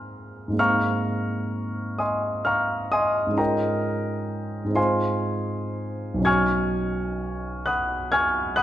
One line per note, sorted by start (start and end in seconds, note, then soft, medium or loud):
0.00 0.46 G#2 soft
0.00 0.49 G#3 soft
0.00 0.51 A#3 soft
0.00 0.54 C4 soft
0.00 0.54 F4 soft
0.00 0.55 G#5 soft
0.00 0.56 A#5 soft
0.00 0.58 C6 soft
0.00 0.58 F6 soft
0.48 3.25 G#2 soft
0.48 3.27 G#3 soft
0.53 3.32 A#3 soft
0.53 3.34 C4 soft
0.58 3.33 D#4 soft
0.58 1.97 F5 medium
0.58 1.97 A#5 medium
0.58 1.97 C#6 medium
0.58 2.01 F6 medium
1.99 2.43 D#5 soft
1.99 2.43 G#5 soft
1.99 2.43 C6 soft
1.99 2.46 D#6 medium
2.45 2.90 F5 soft
2.45 2.90 A#5 soft
2.45 2.90 C#6 soft
2.45 2.92 F6 medium
2.92 3.36 D#5 medium
2.92 3.36 G#5 medium
2.92 3.36 C6 soft
2.92 3.39 D#6 medium
3.27 4.63 G#2 soft
3.27 4.65 G#3 soft
3.32 4.70 C#4 soft
3.32 4.71 D#4 soft
3.37 4.72 F4 soft
3.37 4.73 A#4 soft
3.37 4.73 D#5 soft
3.37 4.73 G5 soft
3.37 4.76 A#5 medium
4.64 6.17 G#2 soft
4.64 6.18 G#3 soft
4.69 6.19 C4 soft
4.69 6.20 D#4 soft
4.74 6.22 F4 soft
4.74 6.23 C5 soft
4.74 6.23 F5 medium
4.74 6.23 G#5 medium
4.74 6.26 C6 medium
6.14 8.63 B1 soft
6.14 8.63 F#3 soft
6.19 8.63 C#4 soft
6.19 8.63 D#4 soft
6.24 8.63 F#4 soft
6.24 7.64 G#5 medium
6.24 7.63 C#6 medium
6.24 7.64 F6 medium
6.24 7.67 G#6 medium
7.66 8.10 F#5 soft
7.66 8.10 B5 soft
7.66 8.10 D#6 soft
7.66 8.13 F#6 medium
8.12 8.56 G#5 medium
8.12 8.56 C#6 medium
8.12 8.55 F6 medium
8.12 8.58 G#6 medium
8.56 8.63 F#5 medium
8.56 8.63 B5 medium
8.56 8.63 D#6 medium
8.56 8.63 F#6 medium